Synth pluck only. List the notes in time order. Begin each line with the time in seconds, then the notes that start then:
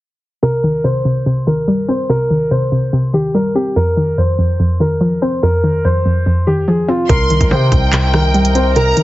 0.43 C3
0.64 D#3
0.84 C3
1.05 C3
1.26 C3
1.47 D#3
1.68 G3
1.89 C4
2.09 C3
2.30 D#3
2.51 C3
2.72 C3
2.93 C3
3.14 D#3
3.35 G3
3.55 C4
3.76 F2
3.97 D#3
4.18 F2
4.39 F2
4.60 F2
4.80 D#3
5.01 F3
5.22 C4
5.43 F2
5.64 D#3
5.85 F2
6.05 F2
6.26 F2
6.47 D#3
6.68 F3
6.88 C4
7.10 C3
7.30 D#3
7.51 C3
7.72 C3
7.93 C3
8.14 D#3
8.34 G3
8.55 C4
8.76 C3
8.97 D#3